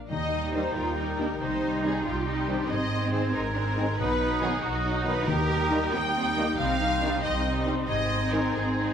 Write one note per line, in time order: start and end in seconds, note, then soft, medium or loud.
0.00 0.12 A#2 soft
0.00 0.11 F3 soft
0.00 1.42 A#4 soft
0.00 0.12 D5 soft
0.00 1.42 A#5 soft
0.09 0.68 D#2 soft
0.09 1.42 D#3 soft
0.09 0.72 D#3 medium
0.09 0.72 D#4 medium
0.09 2.67 D#4 soft
0.09 0.50 D#5 medium
0.09 0.51 D#5 medium
0.09 2.66 G5 soft
0.09 1.37 A#5 soft
0.32 0.96 G3 soft
0.32 0.96 D#4 soft
0.53 0.62 D#3 medium
0.53 0.62 G3 soft
0.53 0.61 A#3 soft
0.53 0.61 D#4 soft
0.53 0.75 C5 medium
0.53 0.76 C5 medium
0.53 1.82 D#5 soft
0.75 1.33 D#2 medium
0.75 0.97 F4 medium
0.75 2.04 G4 soft
0.75 1.40 A#4 soft
0.75 1.41 A#4 medium
0.96 1.40 G3 soft
0.96 1.04 D#4 soft
0.96 1.40 D#4 soft
0.96 1.61 D#4 soft
1.18 1.27 D#3 soft
1.18 1.27 G3 soft
1.18 1.43 A#3 soft
1.18 1.27 A#3 soft
1.18 1.26 D4 medium
1.18 1.27 D#4 soft
1.40 1.98 C2 medium
1.40 2.72 C3 soft
1.40 1.61 G3 soft
1.40 2.04 D#4 medium
1.40 1.62 D#4 soft
1.40 1.85 C5 medium
1.40 1.84 C5 medium
1.40 3.95 C6 soft
1.62 2.25 G3 soft
1.62 2.25 D#4 soft
1.82 1.91 D#3 medium
1.82 1.91 G3 soft
1.82 1.91 C4 soft
1.82 1.91 D#4 soft
1.82 2.06 G#4 soft
1.82 2.06 G#4 medium
1.82 3.33 D#5 soft
2.05 2.63 C2 medium
2.05 2.26 F4 medium
2.05 2.71 G4 soft
2.05 2.69 G4 soft
2.05 2.70 G4 medium
2.26 2.69 G3 soft
2.26 2.90 D#4 soft
2.26 2.69 D#4 soft
2.26 2.48 D#4 soft
2.47 2.56 D#3 soft
2.47 2.55 G3 soft
2.47 2.72 G3 soft
2.47 2.56 C4 medium
2.47 2.70 D4 medium
2.47 2.56 D#4 medium
2.69 3.27 G#1 medium
2.69 4.01 G#2 medium
2.69 3.34 C4 medium
2.69 5.24 D#4 medium
2.69 3.12 D#5 medium
2.69 3.13 D#5 medium
2.69 3.97 G#5 soft
2.91 3.53 G#3 soft
2.91 3.54 C4 soft
2.91 3.76 D#4 soft
3.11 3.20 D#3 medium
3.11 3.20 G#3 medium
3.11 3.20 C4 medium
3.11 3.20 D#4 medium
3.11 3.34 C5 medium
3.11 4.01 C5 soft
3.34 3.91 G#1 medium
3.34 3.42 D#4 medium
3.34 3.99 A#4 medium
3.34 3.97 A#4 medium
3.34 4.40 D#5 soft
3.55 3.97 G#3 soft
3.55 3.98 C4 soft
3.55 3.63 D4 medium
3.55 4.00 G#4 soft
3.77 3.86 D#3 soft
3.77 3.86 G#3 medium
3.77 3.85 C4 medium
3.77 3.85 D#4 medium
3.77 4.19 D#4 soft
3.98 4.55 B1 medium
3.98 5.29 B2 medium
3.98 4.18 F#3 medium
3.98 4.62 B3 medium
3.98 4.18 D#4 soft
3.98 4.40 B4 medium
3.98 4.41 B4 medium
3.98 5.25 F#5 medium
3.98 5.26 D#6 medium
4.19 4.82 F#3 soft
4.19 4.82 D#4 medium
4.19 4.83 D#4 medium
4.41 4.49 D#3 medium
4.41 4.49 F#3 medium
4.41 4.49 B3 medium
4.41 4.49 D#4 medium
4.41 4.63 G#4 medium
4.41 4.50 G#4 medium
4.41 5.70 D#5 soft
4.62 5.20 B1 medium
4.62 5.26 D#4 medium
4.62 5.29 F#4 soft
4.62 5.06 F#4 medium
4.62 5.05 F#4 medium
4.85 5.27 F#3 medium
4.85 5.27 D#4 medium
5.04 5.13 D#3 medium
5.04 5.13 F#3 medium
5.04 5.29 F#3 soft
5.04 5.13 B3 medium
5.04 5.13 D#4 medium
5.04 5.27 B4 medium
5.27 5.86 D#2 medium
5.27 6.61 D#3 medium
5.27 5.90 D#3 medium
5.27 7.74 D#4 medium
5.27 5.94 G4 medium
5.27 5.92 A#4 medium
5.27 5.94 A#4 medium
5.27 7.72 G5 medium
5.27 6.55 D#6 medium
5.49 6.15 G3 medium
5.49 6.15 D#4 medium
5.70 5.79 D#3 medium
5.70 5.78 G3 medium
5.70 5.79 A#3 medium
5.70 5.78 D#4 medium
5.70 7.01 D#5 medium
5.93 6.52 D#2 medium
5.93 6.16 A#3 medium
5.93 6.59 G5 medium
6.16 6.58 G3 medium
6.16 6.24 C4 medium
6.16 6.80 D#4 soft
6.16 6.58 D#4 medium
6.36 6.44 D#3 medium
6.36 6.44 G3 medium
6.36 6.61 A#3 medium
6.36 6.45 A#3 medium
6.36 6.46 A#3 medium
6.36 6.46 D#4 medium
6.58 7.17 C2 medium
6.58 7.91 C3 medium
6.58 6.80 G3 medium
6.58 6.81 C4 medium
6.58 6.80 D#4 medium
6.58 7.22 F5 medium
6.58 7.23 F5 medium
6.58 8.91 C6 medium
6.80 7.45 G3 medium
6.80 7.02 D#4 medium
6.80 7.45 D#4 medium
7.01 7.09 D#3 medium
7.01 7.10 G3 medium
7.01 7.10 C4 medium
7.01 7.24 D4 medium
7.01 7.10 D#4 medium
7.01 8.53 D#5 soft
7.23 7.82 C2 medium
7.23 8.94 C4 medium
7.23 7.91 G4 soft
7.23 7.66 D#5 medium
7.23 7.67 D#5 medium
7.46 7.89 G3 medium
7.46 8.09 D#4 soft
7.46 7.89 D#4 soft
7.66 7.75 D#3 medium
7.66 7.74 G3 soft
7.66 7.91 G3 soft
7.66 7.75 C4 medium
7.66 7.75 D#4 medium
7.88 8.47 G#1 medium
7.88 8.94 G#2 medium
7.88 8.94 D#4 medium
7.88 8.29 D#5 medium
7.88 8.30 D#5 medium
7.88 8.94 G#5 medium
8.10 8.76 C4 medium
8.10 8.94 D#4 soft
8.10 8.76 D#4 soft
8.32 8.41 D#3 medium
8.32 8.40 G#3 medium
8.32 8.41 C4 medium
8.32 8.41 D#4 medium
8.32 8.54 A#4 medium
8.32 8.55 A#4 medium
8.32 8.94 C5 soft
8.53 8.94 G#1 medium
8.53 8.94 G#4 medium
8.53 8.94 D#5 soft
8.76 8.94 C4 soft
8.76 8.94 D#4 soft
8.76 8.94 G#4 soft